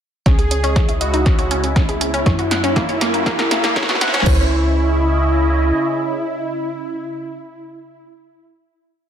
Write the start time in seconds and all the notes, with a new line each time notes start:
0.26 C#2 C#3 G#3 C#4 E4 G#4 D#5, kick, snare, closed hi-hat, riser
0.39 G#4, closed hi-hat
0.51 C#4, closed hi-hat
0.64 C#4, closed hi-hat
0.76 C#5, kick, snare, closed hi-hat
0.89 E4, closed hi-hat
1.01 F#4 D#5, closed hi-hat
1.14 D#4, closed hi-hat
1.26 C#4, kick, snare, closed hi-hat
1.39 C#5, closed hi-hat
1.51 C#4, closed hi-hat
1.64 C#4, closed hi-hat
1.76 C#4 E4, kick, snare, closed hi-hat
1.89 G#4, closed hi-hat
2.01 C#4, closed hi-hat
2.14 C#4, closed hi-hat
2.26 F#2 F#3 A#3 C#4 C#5, kick, snare, closed hi-hat
2.39 F#4, closed hi-hat
2.51 F#5, snare, closed hi-hat
2.64 C#4, closed hi-hat
2.76 A#3, kick, snare, closed hi-hat
2.89 C#5, closed hi-hat
3.01 A#3, snare, closed hi-hat
3.14 A#3, closed hi-hat
3.26 A#3, kick, snare, closed hi-hat
3.39 A#4, snare, closed hi-hat
3.51 A#3, snare, closed hi-hat
3.64 A#3, snare, closed hi-hat
3.76 C#5, kick, snare, closed hi-hat
3.83 snare
3.89 F#4, snare, closed hi-hat
3.95 snare
4.01 F#5, snare, closed hi-hat
4.08 snare
4.14 C#4, snare, closed hi-hat
4.20 snare
4.26 C#2 C#3 C#4 E4 D#5, kick, floor tom, crash